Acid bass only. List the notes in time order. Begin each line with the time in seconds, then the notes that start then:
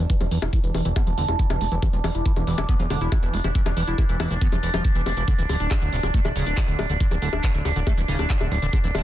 0.10 E3
0.21 F3
0.31 E3
0.42 E4
0.53 E4
0.64 E3
0.75 E3
0.85 E3
0.96 B3
1.07 F3
1.18 D3
1.29 E4
1.39 E4
1.50 E3
1.61 B3
1.72 E3
1.82 E3
1.93 F3
2.04 E3
2.15 E4
2.26 E4
2.36 E3
2.47 E3
2.58 E3
2.69 B3
2.80 F3
2.90 D3
3.01 E4
3.12 E4
3.23 E3
3.34 B3
3.44 E3
3.55 E3
3.66 F3
3.77 E3
3.88 E4
3.98 E4
4.09 E3
4.20 E3
4.31 E3
4.42 B3
4.52 F3
4.63 E3
4.74 F3
4.85 E3
4.95 E3
5.06 E3
5.17 E3
5.28 D3
5.39 E3
5.49 D3
5.60 D4
5.71 D4
5.82 D3
5.93 C#3
6.03 D3
6.14 A3
6.25 E3
6.36 C#3
6.47 D4
6.57 D4
6.68 D3
6.79 A3
6.90 D3
7.00 D3
7.11 E3
7.22 D3
7.33 D4
7.44 D4
7.54 D3
7.65 C#3
7.76 D3
7.87 A3
7.98 E3
8.08 C#3
8.19 D4
8.41 D3
8.52 A3
8.62 D3
8.73 D3
8.84 E3
8.95 D3